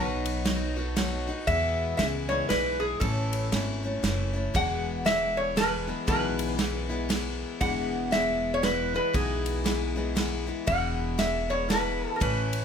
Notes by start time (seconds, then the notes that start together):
Already playing: B1 B2 F#3 B3 D#4 F#4 B4
0.26 ride
0.45 F#3 B3 D#4 F#4, snare, ride
0.76 B3 D#4 F#4
0.82 A4
0.96 F#3 B3 D#4 F#4, snare, ride
1.27 B3 D#4 F#4
1.47 E2 B2 E3 G#3 B3 E4 E5, kick, ride
1.97 C#2 E3 G#3 B3 E4 E5, snare, ride
2.29 E3 G#3 B3 E4 C#5
2.49 B1 E3 G#3 B3 E4 B4, snare, ride
2.80 G#4
3.00 A1 A2 E3 A3 C#4 E4 A4, kick, ride
3.33 ride
3.52 G#1 E3 A3 C#4 E4, snare, ride
3.83 A3 C#4 E4
4.03 F#1 E3 A3 C#4 E4, snare, ride
4.33 A3 C#4 E4
4.54 E1 E2 B2 E3 G#3 B3 E4 F#5, kick, ride
5.05 E3 G#3 B3 E4 E5, snare, ride
5.37 C#5
5.56 E3 G#3 B3 E4 B4, snare, ride
5.87 E3 G#3 B3 E4
6.07 B1 E2 B2 E3 G#3 B3 E4 B4, kick, ride
6.39 ride
6.58 E3 G#3 B3 E4, snare, ride
6.89 E3 G#3 B3 E4
7.09 E3 G#3 B3 E4, snare, ride
7.61 E1 E2 B2 E3 G#3 B3 E4 F#5, kick, ride
8.11 E3 G#3 B3 E4 E5, snare, ride
8.54 C#5
8.62 E3 G#3 B3 E4 B4, snare, ride
8.94 E3 G#3 B3 E4 B4
9.13 B1 E2 B2 E3 G#3 B3 E4 G#4, kick, ride
9.46 ride
9.64 E3 G#3 B3 E4, snare, ride
9.96 E3 G#3 B3 E4
10.15 E3 G#3 B3 E4, snare, ride
10.46 E3 G#3 B3 E4
10.66 E1 E2 B2 E3 G#3 B3 E4 F#5, kick, ride
11.18 E3 G#3 B3 E4 E5, snare, ride
11.49 E3 G#3 B3 E4 C#5
11.69 E3 G#3 B3 E4 B4, snare, ride
12.16 A#4
12.20 A1 A2 E3 A3 C#4 E4 B4, kick, ride
12.53 ride